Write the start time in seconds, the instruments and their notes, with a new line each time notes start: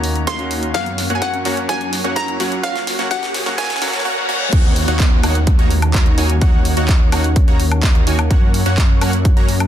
Already playing: detuned saw bass D#2, analog synth pad D#3 A#3 C#4 F#4, grand piano A#3 C#4 D#4 F#4, synth pluck A#5, riser
0.04 open hi-hat
0.15 closed hi-hat
0.27 detuned saw bass D#2, supersaw synth A#3 D#4 F#4 C#5 F5, synth pluck C6, kick, snare, closed hi-hat
0.39 grand piano A#3 C#4 D#4 F#4, closed hi-hat
0.51 open hi-hat
0.63 closed hi-hat
0.74 detuned saw bass F#2, grand piano F#3 A#3 C#4 F#4, supersaw synth A#3 C#4 F#4 C#5 F#5, analog synth pad C#4, synth pluck F5, kick, snare, closed hi-hat
0.86 closed hi-hat
0.98 snare, open hi-hat
1.10 detuned saw bass F#2, grand piano F#3 A#3 C#4 F#4, supersaw synth A#3 C#4 F#4 C#5 F#5, closed hi-hat
1.15 synth pluck G#5
1.22 synth pluck F#5, kick, snare, closed hi-hat
1.34 closed hi-hat
1.45 detuned saw bass F#2, grand piano F#3 A#3 C#4 F#4, supersaw synth A#3 C#4 F#4 C#5 F#5, snare, open hi-hat
1.57 closed hi-hat
1.69 detuned saw bass F#2, grand piano F#3 A#3 C#4 F#4, supersaw synth A#3 C#4 F#4 C#5 F#5, synth pluck G#5, kick, snare, closed hi-hat
1.81 closed hi-hat
1.93 snare, open hi-hat
2.04 detuned saw bass F#2, grand piano F#3 A#3 C#4 F#4, supersaw synth A#3 C#4 F#4 C#5 F#5, closed hi-hat
2.16 synth pluck A#5, kick, snare, closed hi-hat
2.28 closed hi-hat
2.39 detuned saw bass F#2, grand piano F#3 A#3 C#4 F#4, supersaw synth A#3 C#4 F#4 C#5 F#5, snare, open hi-hat
2.52 closed hi-hat
2.63 detuned saw bass F#2, grand piano F#3 A#3 C#4 F#4, supersaw synth A#3 C#4 F#4 C#5 F#5, synth pluck F5, kick, snare, closed hi-hat
2.76 snare, closed hi-hat
2.87 snare, open hi-hat
2.99 detuned saw bass F#2, grand piano F#3 A#3 C#4 F#4, supersaw synth A#3 C#4 F#4 C#5 F#5, snare, closed hi-hat
3.10 detuned saw bass F#2, grand piano F#3 A#3 C#4 F#4, supersaw synth A#3 C#4 F#4 C#5, synth pluck F#5, kick, snare, closed hi-hat
3.23 snare, closed hi-hat
3.34 snare, open hi-hat
3.46 detuned saw bass F#2, grand piano F#3 A#3 C#4 F#4, supersaw synth A#3 C#4 F#4 C#5 F#5, snare, closed hi-hat
3.58 detuned saw bass F#2, grand piano F#3 A#3 C#4 F#4, supersaw synth A#3 C#4 F#4 C#5, synth pluck G#5, kick, snare, closed hi-hat, reverse cymbal
3.64 snare
3.70 snare, closed hi-hat
3.76 snare
3.81 detuned saw bass F#2, grand piano F#3 A#3 C#4 F#4, supersaw synth A#3 C#4 F#4 C#5 F#5, snare, open hi-hat
3.88 snare
3.94 snare, closed hi-hat
3.99 snare
4.05 supersaw synth A#3 C#4 F#4 C#5 F#5
4.29 supersaw synth A#3 C#4 F#4 C#5 F#5
4.52 detuned saw bass D#2, analog synth pad D#3 A#3 C#4 F#4, supersaw synth A#3 D#4 F#4 C#5 F#5, kick, closed hi-hat, crash, downlifter
4.76 open hi-hat
4.88 detuned saw bass D#2, supersaw synth A#3 D#4 F#4 C#5 F#5, closed hi-hat
5.00 kick, clap, closed hi-hat
5.23 detuned saw bass D#2, supersaw synth A#3 D#4 F#4 C#5 F#5, open hi-hat, high woodblock
5.35 closed hi-hat
5.47 kick, closed hi-hat
5.59 detuned saw bass D#2, supersaw synth A#3 D#4 F#4 C#5 A#5, closed hi-hat
5.71 open hi-hat
5.82 closed hi-hat, high woodblock
5.94 detuned saw bass D#2, supersaw synth A#3 D#4 F#4 C#5 A#5, kick, clap, closed hi-hat
6.06 closed hi-hat
6.18 detuned saw bass D#2, supersaw synth A#3 D#4 F#4 C#5 G#5, open hi-hat
6.30 closed hi-hat
6.41 detuned saw bass D#2, supersaw synth A#3 D#4 F#4 C#5 F#5, kick, closed hi-hat
6.65 open hi-hat
6.77 detuned saw bass D#2, supersaw synth A#3 D#4 F#4 C#5 F#5, closed hi-hat
6.89 kick, clap, closed hi-hat
7.12 detuned saw bass D#2, supersaw synth A#3 D#4 F#4 C#5 F#5, open hi-hat, high woodblock
7.24 closed hi-hat
7.36 kick, closed hi-hat
7.48 detuned saw bass D#2, supersaw synth A#3 D#4 F#4 C#5 A#5, closed hi-hat
7.60 open hi-hat
7.72 closed hi-hat, high woodblock
7.83 detuned saw bass D#2, supersaw synth A#3 D#4 F#4 C#5 A#5, kick, clap, closed hi-hat
7.95 closed hi-hat
8.07 detuned saw bass D#2, supersaw synth A#3 D#4 F#4 C#5 G#5, open hi-hat
8.19 closed hi-hat, high woodblock
8.30 detuned saw bass F#2, analog synth pad F#3, supersaw synth A#3 C#4 F#4 C#5 F#5, kick, closed hi-hat
8.54 open hi-hat
8.66 detuned saw bass F#2, supersaw synth A#3 C#4 F#4 C#5 F#5, closed hi-hat
8.78 kick, clap, closed hi-hat
9.01 detuned saw bass F#2, supersaw synth A#3 C#4 F#4 C#5 F#5, open hi-hat, high woodblock
9.13 closed hi-hat
9.25 kick, closed hi-hat
9.37 detuned saw bass F#2, supersaw synth A#3 C#4 F#4 C#5 A#5, closed hi-hat
9.49 open hi-hat
9.60 closed hi-hat, high woodblock